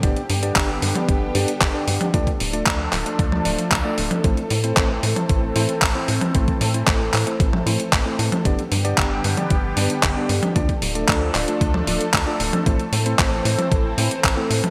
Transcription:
<<
  \new Staff \with { instrumentName = "Tine electric piano" } { \time 4/4 \key a \minor \tempo 4 = 114 <b d' g' d''>16 r8 <b d' g' d''>8 r8 <b d' g' d''>16 r8 <b d' g' d''>16 r8 <b d' g' d''>8. | <a d' f' d''>16 r8 <a d' f' d''>8 r8 <a d' f' d''>16 r8 <a d' f' d''>16 r8 <a d' f' d''>8. | <a c' e' c''>16 r8 <a c' e' c''>8 r8 <a c' e' c''>16 r8 <a c' e' c''>16 r8 <a c' e' c''>8. | <a c' e' c''>16 r8 <a c' e' c''>8 r8 <a c' e' c''>16 r8 <a c' e' c''>16 r8 <a c' e' c''>8. |
<b d' g' d''>16 r8 <b d' g' d''>8 r8 <b d' g' d''>16 r8 <b d' g' d''>16 r8 <b d' g' d''>8. | <a d' f' d''>16 r8 <a d' f' d''>8 r8 <a d' f' d''>16 r8 <a d' f' d''>16 r8 <a d' f' d''>8. | <a c' e' c''>16 r8 <a c' e' c''>8 r8 <a c' e' c''>16 r8 <a c' e' c''>16 r8 <a c' e' c''>8. | }
  \new Staff \with { instrumentName = "Analog synth pad" } { \time 4/4 \key a \minor << { <g g'>1 | <a a'>1~ | <a a'>1~ | <a a'>1 |
<g g'>1 | <a a'>1~ | <a a'>1 | } \\ { <d b>1 | <f d'>1 | <e c'>1~ | <e c'>1 |
<d b>1 | <f d'>1 | <e c'>1 | } >> }
  \new Staff \with { instrumentName = "Analog synth bass" } { \clef bass \time 4/4 \key a \minor g,,8 g,8 g,,8 g,8 g,,8 g,8 g,,8 g,8 | d,8 d,,8 d,8 d,,8 d,8 d,,8 d,8 d,,8 | a,,8 a,8 a,,8 a,8 a,,8 a,8 a,,8 a,8 | a,,8 a,8 a,,8 a,8 a,,8 a,8 a,,8 a,8 |
g,,8 g,8 g,,8 g,8 g,,8 g,8 g,,8 g,8 | d,8 d,,8 d,8 d,,8 d,8 d,,8 d,8 d,,8 | a,,8 a,8 a,,8 a,8 a,,8 a,8 a,,8 a,8 | }
  \new DrumStaff \with { instrumentName = "Drums" } \drummode { \time 4/4 <hh bd>16 hh16 hho16 hh16 <hc hh bd>8 hho16 <hh tommh>16 <hh bd>8 hho16 hh16 <hc hh bd>8 hho16 <hh tommh>16 | <hh bd>16 <hh bd>16 hho16 hh16 <hc hh bd>8 <hc hho>16 hh16 <hh bd>16 tommh16 hho16 hh16 <hc hh bd>8 hho16 <hh tommh>16 | <hh bd>16 hh16 hho16 hh16 <hc hh bd>8 hho16 <hh tommh>16 <hh bd>8 hho16 hh16 <hc hh bd>8 hho16 <hh tommh>16 | <hh bd>16 <hh bd>16 hho16 hh16 <hc hh bd>8 <hc hho>16 hh16 <hh bd>16 tommh16 hho16 hh16 <hc hh bd>8 hho16 <hh tommh>16 |
<hh bd>16 hh16 hho16 hh16 <hc hh bd>8 hho16 <hh tommh>16 <hh bd>8 hho16 hh16 <hc hh bd>8 hho16 <hh tommh>16 | <hh bd>16 <hh bd>16 hho16 hh16 <hc hh bd>8 <hc hho>16 hh16 <hh bd>16 tommh16 hho16 hh16 <hc hh bd>8 hho16 <hh tommh>16 | <hh bd>16 hh16 hho16 hh16 <hc hh bd>8 hho16 <hh tommh>16 <hh bd>8 hho16 hh16 <hc hh bd>8 hho16 <hh tommh>16 | }
>>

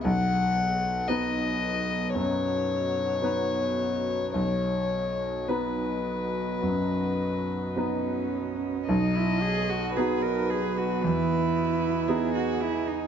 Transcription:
<<
  \new Staff \with { instrumentName = "Violin" } { \time 4/4 \key b \major \tempo 4 = 56 fis''4 dis''4 cis''2 | cis''4 b'2~ b'8 r8 | dis''4 b'2 gis'4 | }
  \new Staff \with { instrumentName = "Ambient pad" } { \time 4/4 \key b \major << { <b dis''>1 | <b dis''>1 | <b dis''>1 | } \\ { fis'1 | fis'1 | fis'2 gis'2 | } >> }
  \new Staff \with { instrumentName = "Cello" } { \time 4/4 \key b \major r1 | r2. cis'4 | dis'16 e'16 gis'16 fis'16 gis'16 ais'16 gis'16 fis'16 e'4~ e'16 fis'16 e'16 dis'16 | }
  \new Staff \with { instrumentName = "Grand piano" } { \time 4/4 \key b \major b,,4 <b dis' b'>4 fis,4 <b dis' b'>4 | b,,4 <b dis' b'>4 fis,4 <b dis' b'>4 | b,,4 <b dis' fis'>4 e,4 <b dis' gis'>4 | }
>>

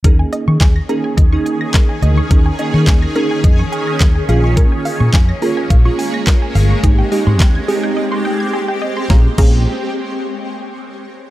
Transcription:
<<
  \new Staff \with { instrumentName = "Synth arpeggio sound" } { \time 4/4 \key ees \mixolydian \tempo 4 = 106 bes'16 aes''16 ees''16 des'''16 aes''16 bes'''16 bes'16 aes''16 ees''16 des'''16 aes''16 bes'''16 bes'16 aes''16 ees''16 des'''16 | bes'16 aes''16 ees''16 des'''16 aes''16 bes'''16 bes'16 aes''16 ees''16 des'''16 aes''16 bes'''16 bes'16 aes''16 f''16 des'''16 | bes'16 aes''16 f''16 des'''16 aes''16 bes'''16 bes'16 aes''16 f''16 des'''16 aes''16 bes'''16 bes'16 aes''16 f''16 des'''16 | aes'16 g''16 ees''16 c'''16 g''16 aes'''16 aes'16 g''16 ees''16 c'''16 g''16 aes'''16 aes'16 g''16 ees''16 c'''16 |
<aes' des'' f'' bes''>8 <aes' des'' f'' bes''>8 r2. | }
  \new Staff \with { instrumentName = "Synth keys" } { \time 4/4 \key ees \mixolydian <bes des' ees' aes'>4~ <bes des' ees' aes'>16 r16 <bes des' ees' aes'>8 r16 <bes des' ees' aes'>4. r16 | <bes des' ees' aes'>8 <bes des' ees' aes'>8. r16 <bes des' ees' aes'>4.~ <bes des' ees' aes'>16 r16 <bes des' f' aes'>8~ | <bes des' f' aes'>4~ <bes des' f' aes'>16 r16 <bes des' f' aes'>8 r16 <bes des' f' aes'>4. r16 | <aes c' ees' g'>8 <aes c' ees' g'>8. r16 <aes c' ees' g'>4.~ <aes c' ees' g'>16 r8. |
<bes des' f' aes'>16 r16 <bes des' f' aes'>8 r2. | }
  \new Staff \with { instrumentName = "Ambient pad" } { \time 4/4 \key ees \mixolydian << { <des' aes'>1~ | <des' aes'>2.~ <des' aes'>8 bes8~ | bes1 | <c' g'>1 |
r1 | } \\ { ees1~ | ees2.~ ees8 aes8~ | aes1~ | aes1 |
r1 | } >> }
  \new Staff \with { instrumentName = "Fingered electric bass" } { \clef bass \time 4/4 \key ees \mixolydian ees,8 r16 ees16 ees,8 r8 ees,8 r4 d,8 | ees,8 r16 ees16 ees,8 r8 f,8 r8 ees,8 bes,,8~ | bes,,8 r16 bes,16 f,8 r8 bes,,8 r4 g,,8 | aes,,8 r16 aes,16 ees,8 r2 r8 |
bes,,16 r16 bes,,8 r2. | }
  \new DrumStaff \with { instrumentName = "Drums" } \drummode { \time 4/4 <hh bd>8 hh8 <hc hh bd sn>8 hh8 <hh bd>8 hh8 <hc hh bd sn>8 hh8 | <hh bd>8 hh8 <hc hh bd sn>8 hh8 <hh bd>8 hh8 <hc hh bd sn>8 hh8 | <hh bd>8 hho8 <hc hh bd sn>8 hho8 <hh bd>8 hho8 <hc hh bd sn>8 hho8 | <hh bd>8 hho8 <hc hh bd sn>8 hho8 r4 r4 |
<bd sn>8 <cymc bd>8 r4 r4 r4 | }
>>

